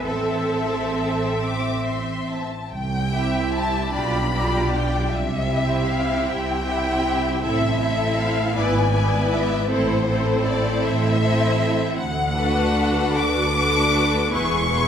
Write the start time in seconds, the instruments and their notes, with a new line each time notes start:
0.05 double bass section A1, viola section C4, cello section A4, violin section E5 A5
1.40 violin section D6
1.86 violin section C6
2.30 violin section A5
2.71 double bass section C2, cello section C2, violin section G5
3.11 viola section C4 E4, violin section G4 E5
3.53 violin section A5
3.93 double bass section B1, cello section B2, viola section D4 F4, violin section G4 D5 B5
4.33 viola section D4 F4, violin section G4 D5
4.71 violin section G5
5.11 double bass section C2, cello section C3, violin section E5
5.50 viola section C4 E4, violin section G4 E5
5.88 violin section F5
6.27 double bass section C2, cello section C3, violin section G5
6.65 viola section C4 E4, violin section G4 E5
7.42 double bass section A1, cello section A2, viola section C4 E4, violin section A4 E5
7.80 viola section C4 E4, violin section A4 E5
8.17 violin section F5
8.55 double bass section G#1, cello section G#2, viola section B3 E4, violin section B4 D5 G#5
8.93 viola section B3 E4, violin section B4 D5
9.31 violin section E5
9.70 double bass section A1, cello section A2, viola section C4 E4, violin section A4 C5
10.08 viola section C4 E4, violin section A4 C5
10.46 violin section D5
10.85 double bass section A1, cello section A2, violin section E5
11.21 viola section C4 E4, violin section A4 C5
11.96 cello section D2, double bass section D2, violin section F#5
12.34 viola section D4 F#4, violin section A4 B4
13.17 cello section D2, double bass section D2, violin section D6
13.56 viola section D4 F#4, violin section A4 B4
14.31 double bass section E1, cello section E2, viola section B3 E4, violin section G#4 B4 C#6
14.69 viola section B3 E4, violin section G#4 B4